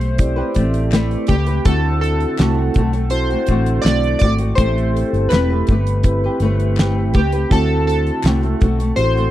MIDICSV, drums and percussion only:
0, 0, Header, 1, 2, 480
1, 0, Start_track
1, 0, Tempo, 731529
1, 1089, Time_signature, 4, 2, 24, 8
1, 6108, End_track
2, 0, Start_track
2, 0, Title_t, "Drums"
2, 7, Note_on_c, 9, 42, 53
2, 73, Note_off_c, 9, 42, 0
2, 120, Note_on_c, 9, 42, 90
2, 125, Note_on_c, 9, 36, 94
2, 186, Note_off_c, 9, 42, 0
2, 191, Note_off_c, 9, 36, 0
2, 357, Note_on_c, 9, 42, 65
2, 369, Note_on_c, 9, 36, 74
2, 423, Note_off_c, 9, 42, 0
2, 434, Note_off_c, 9, 36, 0
2, 484, Note_on_c, 9, 42, 50
2, 550, Note_off_c, 9, 42, 0
2, 600, Note_on_c, 9, 39, 73
2, 611, Note_on_c, 9, 42, 92
2, 612, Note_on_c, 9, 38, 106
2, 666, Note_off_c, 9, 39, 0
2, 677, Note_off_c, 9, 38, 0
2, 677, Note_off_c, 9, 42, 0
2, 729, Note_on_c, 9, 42, 33
2, 794, Note_off_c, 9, 42, 0
2, 832, Note_on_c, 9, 42, 81
2, 846, Note_on_c, 9, 36, 91
2, 897, Note_off_c, 9, 42, 0
2, 912, Note_off_c, 9, 36, 0
2, 961, Note_on_c, 9, 42, 57
2, 1026, Note_off_c, 9, 42, 0
2, 1083, Note_on_c, 9, 42, 91
2, 1086, Note_on_c, 9, 36, 113
2, 1149, Note_off_c, 9, 42, 0
2, 1151, Note_off_c, 9, 36, 0
2, 1335, Note_on_c, 9, 42, 69
2, 1401, Note_off_c, 9, 42, 0
2, 1447, Note_on_c, 9, 42, 44
2, 1512, Note_off_c, 9, 42, 0
2, 1563, Note_on_c, 9, 39, 83
2, 1567, Note_on_c, 9, 42, 82
2, 1573, Note_on_c, 9, 38, 114
2, 1628, Note_off_c, 9, 39, 0
2, 1633, Note_off_c, 9, 42, 0
2, 1639, Note_off_c, 9, 38, 0
2, 1799, Note_on_c, 9, 42, 67
2, 1810, Note_on_c, 9, 36, 92
2, 1865, Note_off_c, 9, 42, 0
2, 1876, Note_off_c, 9, 36, 0
2, 1925, Note_on_c, 9, 42, 51
2, 1990, Note_off_c, 9, 42, 0
2, 2034, Note_on_c, 9, 42, 94
2, 2100, Note_off_c, 9, 42, 0
2, 2169, Note_on_c, 9, 42, 36
2, 2234, Note_off_c, 9, 42, 0
2, 2274, Note_on_c, 9, 42, 65
2, 2287, Note_on_c, 9, 36, 74
2, 2339, Note_off_c, 9, 42, 0
2, 2353, Note_off_c, 9, 36, 0
2, 2404, Note_on_c, 9, 42, 54
2, 2469, Note_off_c, 9, 42, 0
2, 2520, Note_on_c, 9, 39, 81
2, 2532, Note_on_c, 9, 42, 99
2, 2533, Note_on_c, 9, 38, 110
2, 2586, Note_off_c, 9, 39, 0
2, 2598, Note_off_c, 9, 42, 0
2, 2599, Note_off_c, 9, 38, 0
2, 2647, Note_on_c, 9, 42, 36
2, 2713, Note_off_c, 9, 42, 0
2, 2754, Note_on_c, 9, 42, 82
2, 2766, Note_on_c, 9, 36, 93
2, 2820, Note_off_c, 9, 42, 0
2, 2832, Note_off_c, 9, 36, 0
2, 2877, Note_on_c, 9, 42, 55
2, 2942, Note_off_c, 9, 42, 0
2, 3005, Note_on_c, 9, 36, 115
2, 3005, Note_on_c, 9, 42, 93
2, 3070, Note_off_c, 9, 42, 0
2, 3071, Note_off_c, 9, 36, 0
2, 3136, Note_on_c, 9, 42, 35
2, 3201, Note_off_c, 9, 42, 0
2, 3258, Note_on_c, 9, 42, 75
2, 3324, Note_off_c, 9, 42, 0
2, 3373, Note_on_c, 9, 42, 41
2, 3438, Note_off_c, 9, 42, 0
2, 3484, Note_on_c, 9, 39, 84
2, 3492, Note_on_c, 9, 42, 90
2, 3498, Note_on_c, 9, 38, 117
2, 3550, Note_off_c, 9, 39, 0
2, 3558, Note_off_c, 9, 42, 0
2, 3564, Note_off_c, 9, 38, 0
2, 3719, Note_on_c, 9, 42, 65
2, 3731, Note_on_c, 9, 36, 89
2, 3785, Note_off_c, 9, 42, 0
2, 3796, Note_off_c, 9, 36, 0
2, 3849, Note_on_c, 9, 42, 60
2, 3915, Note_off_c, 9, 42, 0
2, 3959, Note_on_c, 9, 42, 88
2, 3965, Note_on_c, 9, 36, 94
2, 4025, Note_off_c, 9, 42, 0
2, 4030, Note_off_c, 9, 36, 0
2, 4198, Note_on_c, 9, 42, 58
2, 4264, Note_off_c, 9, 42, 0
2, 4328, Note_on_c, 9, 42, 49
2, 4394, Note_off_c, 9, 42, 0
2, 4440, Note_on_c, 9, 39, 71
2, 4456, Note_on_c, 9, 42, 93
2, 4457, Note_on_c, 9, 38, 108
2, 4506, Note_off_c, 9, 39, 0
2, 4522, Note_off_c, 9, 42, 0
2, 4523, Note_off_c, 9, 38, 0
2, 4682, Note_on_c, 9, 42, 79
2, 4690, Note_on_c, 9, 36, 94
2, 4748, Note_off_c, 9, 42, 0
2, 4755, Note_off_c, 9, 36, 0
2, 4806, Note_on_c, 9, 42, 54
2, 4871, Note_off_c, 9, 42, 0
2, 4928, Note_on_c, 9, 36, 112
2, 4928, Note_on_c, 9, 42, 91
2, 4994, Note_off_c, 9, 36, 0
2, 4994, Note_off_c, 9, 42, 0
2, 5180, Note_on_c, 9, 42, 66
2, 5245, Note_off_c, 9, 42, 0
2, 5293, Note_on_c, 9, 42, 40
2, 5358, Note_off_c, 9, 42, 0
2, 5401, Note_on_c, 9, 39, 87
2, 5413, Note_on_c, 9, 42, 86
2, 5419, Note_on_c, 9, 38, 112
2, 5467, Note_off_c, 9, 39, 0
2, 5479, Note_off_c, 9, 42, 0
2, 5485, Note_off_c, 9, 38, 0
2, 5533, Note_on_c, 9, 42, 34
2, 5598, Note_off_c, 9, 42, 0
2, 5648, Note_on_c, 9, 42, 63
2, 5654, Note_on_c, 9, 36, 101
2, 5714, Note_off_c, 9, 42, 0
2, 5720, Note_off_c, 9, 36, 0
2, 5773, Note_on_c, 9, 42, 61
2, 5839, Note_off_c, 9, 42, 0
2, 5885, Note_on_c, 9, 42, 84
2, 5951, Note_off_c, 9, 42, 0
2, 6019, Note_on_c, 9, 42, 35
2, 6084, Note_off_c, 9, 42, 0
2, 6108, End_track
0, 0, End_of_file